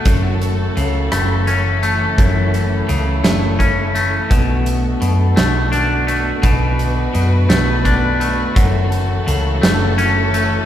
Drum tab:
HH |xxxxxx|xxxxxx|xxxxxx|xxxxxx|
SD |---r--|---o--|---o--|---o--|
BD |o-----|o---o-|o-----|o---o-|

HH |xxxxxx|
SD |---o--|
BD |o-----|